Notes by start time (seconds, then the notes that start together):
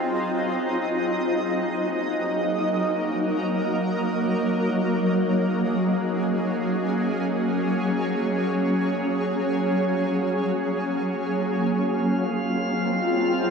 Already playing: F#3 C4 D#4 F4 G#4 D#5
1.06 F#3
1.24 A#3
1.71 A#4
4.97 G#4
5.15 C#4
5.81 C#5
11.62 F#3 F4 F5
11.70 C4
12.25 D#4 D#5